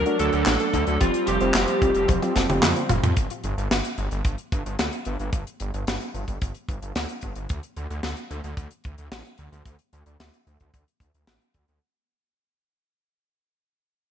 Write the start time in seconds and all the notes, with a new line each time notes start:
Already playing: F#3 D4 A#4
0.06 A3 D4 F#4, closed hi-hat
0.19 D2 A3 D4 F#4 A4, closed hi-hat
0.33 D2, closed hi-hat
0.46 A1 D4, snare, clap, closed hi-hat
0.60 A3 D4 A4, closed hi-hat
0.73 D2 D4, kick, closed hi-hat
0.87 D2 A3 D4 F#4, closed hi-hat
1.00 F1 F3 G3 C4 F4 G4, kick, closed hi-hat
1.14 closed hi-hat
1.27 F1 G4, closed hi-hat
1.40 F1 C4 F4 C5, closed hi-hat
1.54 F1 C4, snare, clap, closed hi-hat
1.68 closed hi-hat
1.82 F1 C4 F4 G4, kick, closed hi-hat
1.95 F1, closed hi-hat
2.08 F1 F3, kick, closed hi-hat, high tom
2.22 C4 F4 G4, closed hi-hat, high tom
2.36 F1 C4 F4 A4, kick, snare, closed hi-hat
2.49 F1 C4 F4 G4, closed hi-hat, mid tom
2.62 F2 F4, snare, clap, closed hi-hat, mid tom
2.76 C4 F4 C5, closed hi-hat
2.89 F1 F4, closed hi-hat, mid tom
3.03 F2, closed hi-hat, mid tom
3.17 G1, kick, closed hi-hat
3.30 closed hi-hat
3.44 G1, closed hi-hat
3.58 G1, closed hi-hat
3.71 G1, snare, closed hi-hat
3.84 closed hi-hat
3.98 G1, closed hi-hat
4.11 G1, closed hi-hat
4.25 G1, kick, closed hi-hat
4.38 closed hi-hat
4.52 G1, kick, closed hi-hat
4.66 G1, closed hi-hat
4.79 D2, snare, closed hi-hat
4.92 closed hi-hat
5.05 G1, closed hi-hat
5.20 G1, closed hi-hat
5.33 G1, kick, closed hi-hat
5.47 closed hi-hat
5.60 G1, closed hi-hat
5.74 G1, closed hi-hat
5.87 G1, snare, closed hi-hat
6.01 closed hi-hat
6.14 G1, closed hi-hat
6.28 G1, kick, closed hi-hat
6.41 G1, kick, closed hi-hat
6.54 closed hi-hat
6.69 G1, kick, closed hi-hat
6.82 G1, closed hi-hat
6.95 D2, snare, closed hi-hat
7.09 closed hi-hat
7.21 G1, kick, closed hi-hat
7.35 G1, closed hi-hat
7.49 D2, kick, closed hi-hat
7.63 closed hi-hat
7.76 D2, closed hi-hat
7.90 D2, closed hi-hat
8.03 D2, snare, closed hi-hat
8.17 closed hi-hat
8.31 D2, closed hi-hat
8.44 D2, closed hi-hat
8.57 D2, kick, closed hi-hat
8.71 closed hi-hat
8.84 D2, kick, closed hi-hat
8.98 D2, closed hi-hat
9.12 A1, snare, closed hi-hat
9.25 closed hi-hat
9.38 D2, closed hi-hat
9.52 D2, closed hi-hat
9.66 D2, kick, closed hi-hat
9.79 closed hi-hat
9.93 D2, closed hi-hat
10.06 D2, closed hi-hat
10.20 D2, snare, closed hi-hat
10.34 closed hi-hat
10.47 D2, closed hi-hat
10.60 D2, kick, closed hi-hat
10.74 D2, kick, closed hi-hat
10.88 closed hi-hat
11.00 D2, kick, closed hi-hat
11.14 D2, closed hi-hat
11.27 A1, snare, closed hi-hat
11.41 closed hi-hat
11.54 D2, kick, closed hi-hat
11.68 D2, closed hi-hat